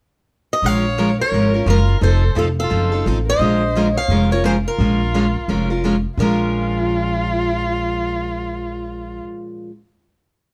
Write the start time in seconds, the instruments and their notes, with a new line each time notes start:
0.53 steel-string acoustic guitar D#5
0.62 upright bass A#1, steel-string acoustic guitar F3 G#3 C#4 F4 A#4 F5, violin C#5
0.98 steel-string acoustic guitar F3 G#3 C#4 F4 A#4
1.21 violin A#4, steel-string acoustic guitar C#5
1.32 upright bass G#1, steel-string acoustic guitar F3 G#3 C#4 F4 A#4
1.54 steel-string acoustic guitar C#4 F4 A#4
1.66 upright bass F#1, steel-string acoustic guitar F3 G#3 C#4 F4 A#4
1.70 violin F4
2.01 upright bass F1, steel-string acoustic guitar F3 C4 D#4 A4 C5, violin A4
2.35 upright bass F1, steel-string acoustic guitar F3 C4 D#4 A4, violin F4
2.59 violin F4, steel-string acoustic guitar A4
2.70 upright bass F#1, steel-string acoustic guitar F3 C4 D#4 A4
2.92 steel-string acoustic guitar C4 D#4 A4
3.06 upright bass A1, steel-string acoustic guitar F3 C4 D#4 A4
3.27 violin C5, steel-string acoustic guitar D#5
3.39 upright bass A#1, steel-string acoustic guitar F3 G#3 C#4 F4 A#4
3.76 steel-string acoustic guitar F3 G#3 C#4 F4 A#4
3.94 violin C#5, steel-string acoustic guitar F5
4.08 upright bass F1, steel-string acoustic guitar F3 G#3 C#4 F4 A#4
4.31 steel-string acoustic guitar C#4 F4 A#4 C#5, violin A#4
4.44 steel-string acoustic guitar F3 G#3 C#4 F4 A#4 C5, violin G#4
4.67 violin F4, steel-string acoustic guitar A#4
4.78 upright bass A#1, steel-string acoustic guitar F3 G#3 C#4 F4 A#4
5.14 steel-string acoustic guitar F3 G#3 C#4 F4 A#4
5.48 upright bass F1, steel-string acoustic guitar F3 G#3 C#4 F4 A#4
5.70 steel-string acoustic guitar C#4 F4 A#4
5.84 steel-string acoustic guitar F3 G#3 C#4 F4 A#4
6.17 upright bass A#1, steel-string acoustic guitar A#2 F3 G#3 C#4 A#4, violin F4
6.22 steel-string acoustic guitar F4 A#4